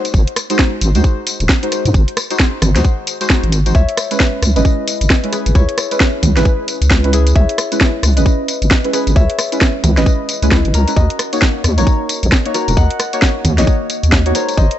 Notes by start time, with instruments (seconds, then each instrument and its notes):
0.05 closed hi-hat, tambourine
0.14 wobble bass G#1, kick, tambourine
0.27 open hi-hat
0.36 cross-stick, open hi-hat, tambourine
0.50 synth stab G#3 D#4 F#4 C5, closed hi-hat, tambourine
0.59 kick, snare, tambourine
0.81 wobble bass G#1, open hi-hat, tambourine
0.95 wobble bass D#2, synth stab G#3 D#4 F#4 C5, closed hi-hat, tambourine
1.04 kick, tambourine
1.27 open hi-hat, tambourine
1.40 wobble bass D#1, closed hi-hat, tambourine
1.49 kick, snare, tambourine
1.63 synth stab G#3 D#4 F#4 C5, closed hi-hat
1.72 synth stab G#3 D#4 F#4 C5, cross-stick, open hi-hat, tambourine
1.85 wobble bass G#2, closed hi-hat, tambourine
1.94 wobble bass G#1, kick, tambourine
2.08 open hi-hat
2.17 cross-stick, open hi-hat, tambourine
2.30 synth stab G#3 D#4 F#4 C5, closed hi-hat, tambourine
2.39 kick, snare, tambourine
2.62 wobble bass G#1, cross-stick, open hi-hat, tambourine, high conga
2.76 wobble bass D#2, synth stab G#3 D#4 F#4 C5, snare, closed hi-hat, tambourine
2.85 kick, tambourine
3.07 open hi-hat, tambourine
3.21 synth stab G#3 D#4 F#4 C5, closed hi-hat, tambourine
3.30 synth stab G#3 F#4 C5, kick, snare
3.43 wobble bass G#1, closed hi-hat
3.52 open hi-hat, tambourine
3.66 synth stab G#3 D#4 F#4 C5, closed hi-hat, tambourine
3.74 wobble bass C#2, harp C#5 E5, kick, tambourine
3.89 open hi-hat
3.97 cross-stick, open hi-hat, tambourine
4.11 synth stab G#3 C#4 E4 B4, closed hi-hat, tambourine
4.20 kick, snare, tambourine
4.42 wobble bass C#2, cross-stick, open hi-hat, tambourine
4.56 wobble bass G#1, synth stab G#3 C#4 E4 B4, harp B4 D#5, closed hi-hat, tambourine
4.65 kick, tambourine
4.88 open hi-hat, tambourine
5.01 wobble bass G#1, closed hi-hat, tambourine
5.10 kick, snare, tambourine
5.24 synth stab G#3 C#4 E4 B4, closed hi-hat
5.32 synth stab G#3 C#4 E4 B4, harp G#4 B4, cross-stick, open hi-hat, tambourine
5.46 wobble bass G#1, closed hi-hat, tambourine
5.55 wobble bass C#2, harp E4 C#5, kick, tambourine
5.69 open hi-hat
5.78 cross-stick, open hi-hat, tambourine
5.91 synth stab G#3 C#4 E4 B4, closed hi-hat, tambourine
6.00 kick, snare, tambourine
6.23 wobble bass C#2, open hi-hat, tambourine, high conga
6.36 wobble bass G#1, synth stab G#3 C#4 E4 B4, harp G#4 B4, snare, closed hi-hat, tambourine
6.45 kick, tambourine
6.68 open hi-hat, tambourine
6.81 wobble bass C#2, closed hi-hat, tambourine
6.90 kick, snare, tambourine
7.04 synth stab G#3 C#4 E4 B4, closed hi-hat
7.13 synth stab G#3 C#4 E4 B4, harp E4 G#4, open hi-hat, tambourine
7.27 closed hi-hat, tambourine
7.35 wobble bass C#2, harp C#5 E5, kick
7.49 open hi-hat
7.58 cross-stick, open hi-hat, tambourine
7.72 synth stab G#3 C#4 E4 B4, closed hi-hat, tambourine
7.81 kick, snare, tambourine
8.03 wobble bass C#2, cross-stick, open hi-hat, tambourine
8.16 wobble bass G#1, synth stab G#3 C#4 E4 B4, harp B4 D#5, closed hi-hat, tambourine
8.26 kick, tambourine
8.48 open hi-hat, tambourine
8.62 wobble bass G#1, closed hi-hat, tambourine
8.71 kick, snare, tambourine
8.84 synth stab G#3 C#4 E4 B4, closed hi-hat
8.93 synth stab G#3 C#4 E4 B4, harp G#4 B4, cross-stick, open hi-hat, tambourine
9.07 wobble bass G#1, closed hi-hat, tambourine
9.15 wobble bass C#2, harp C#5 E5, kick, tambourine
9.30 open hi-hat
9.39 cross-stick, open hi-hat, tambourine
9.52 synth stab G#3 C#4 E4 B4, closed hi-hat, tambourine
9.61 kick, snare, tambourine
9.84 wobble bass C#2, open hi-hat, tambourine, high conga
9.97 wobble bass G#1, synth stab G#3 C#4 E4 B4, harp B4 D#5, snare, closed hi-hat, tambourine
10.06 kick, tambourine
10.29 open hi-hat, tambourine
10.42 wobble bass C#2, synth stab G#3 C#4 E4 B4, closed hi-hat, tambourine
10.51 synth stab G#3 C#4 E4 B4, kick, snare, tambourine
10.65 wobble bass G#1, closed hi-hat
10.74 wobble bass C#2, harp C#4 A#4, open hi-hat, tambourine
10.88 synth stab G#3 C#4 E4 B4, closed hi-hat, tambourine
10.96 wobble bass D#2, harp F#4 D#5, kick, tambourine
11.10 open hi-hat
11.19 cross-stick, open hi-hat, tambourine
11.33 synth stab A#3 D#4 F#4 C#5, closed hi-hat, tambourine
11.42 kick, snare, tambourine
11.64 wobble bass D#2, cross-stick, open hi-hat, tambourine
11.77 wobble bass A#1, synth stab A#3 D#4 F#4 C#5, harp A#4 C#5, closed hi-hat, tambourine
11.87 kick, tambourine
12.09 open hi-hat, tambourine
12.23 wobble bass A#1, closed hi-hat, tambourine
12.32 kick, snare, tambourine
12.45 synth stab A#3 D#4 F#4 C#5, closed hi-hat
12.54 synth stab A#3 D#4 F#4 C#5, harp F#4 A#4, cross-stick, open hi-hat, tambourine
12.68 wobble bass D#1, closed hi-hat, tambourine
12.77 wobble bass D#2, harp D#5 F#5, kick, tambourine
12.91 open hi-hat
13.00 cross-stick, open hi-hat, tambourine
13.13 synth stab A#3 D#4 F#4 C#5, closed hi-hat, tambourine
13.22 kick, snare, tambourine
13.45 wobble bass D#2, open hi-hat, tambourine, high conga
13.58 wobble bass A#1, synth stab A#3 D#4 F#4 C#5, harp F#4 D#5, snare, closed hi-hat, tambourine
13.67 kick, tambourine
13.90 open hi-hat, tambourine
14.03 wobble bass D#2, closed hi-hat, tambourine
14.12 kick, snare, tambourine
14.26 synth stab A#3 D#4 F#4 C#5, closed hi-hat
14.35 synth stab G#3 D#4 F#4 C5, harp A#4 C#5, open hi-hat, tambourine
14.49 closed hi-hat, tambourine
14.57 wobble bass G#1, harp C5 D#5, kick, tambourine
14.71 open hi-hat